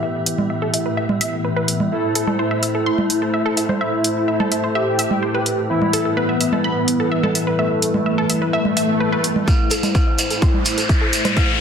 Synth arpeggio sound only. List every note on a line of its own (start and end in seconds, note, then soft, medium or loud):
0.03 0.12 E5 medium
0.50 0.56 E5 medium
0.62 0.71 A4 loud
0.74 0.82 E5 medium
0.86 0.89 B4 medium
0.97 1.03 E5 loud
1.21 1.30 E5 loud
1.45 1.48 B4 medium
1.56 1.62 B4 medium
2.15 2.21 A4 loud
2.27 2.36 A4 medium
2.39 2.45 C5 medium
2.51 2.57 E5 medium
2.63 2.71 E5 medium
2.75 2.80 A4 medium
2.86 2.90 C6 loud
3.22 3.30 A4 medium
3.34 3.39 E5 medium
3.46 3.54 A4 loud
3.57 3.66 E5 medium
3.69 3.73 C5 medium
3.81 3.90 E5 medium
4.28 4.34 E5 medium
4.40 4.49 A4 medium
4.52 4.60 E5 medium
4.64 4.67 C5 medium
4.75 4.81 E5 loud
4.99 5.08 E5 loud
5.23 5.26 C5 medium
5.35 5.40 B4 medium
5.93 5.99 A4 medium
6.05 6.14 A4 medium
6.17 6.23 B4 medium
6.29 6.35 E5 medium
6.41 6.49 E5 medium
6.53 6.58 A4 medium
6.64 6.68 B5 loud
7.00 7.08 A4 medium
7.12 7.17 E5 medium
7.23 7.32 A4 loud
7.35 7.44 E5 medium
7.47 7.51 B4 medium
7.59 7.68 E5 medium
8.06 8.12 E5 medium
8.18 8.27 A4 medium
8.30 8.38 E5 medium
8.42 8.45 B4 medium
8.53 8.59 E5 loud
8.77 8.86 E5 loud
9.00 9.04 B4 medium
9.12 9.18 B4 medium
9.71 9.77 A4 loud
9.83 9.92 A4 medium
9.95 10.01 C5 loud
10.07 10.13 E5 medium
10.18 10.27 E5 medium
10.30 10.36 A4 medium
10.42 10.46 C6 loud
10.78 10.86 A4 medium
10.89 10.95 E5 medium
11.01 11.10 A4 loud
11.13 11.22 E5 medium
11.25 11.28 C5 medium
11.37 11.45 E5 medium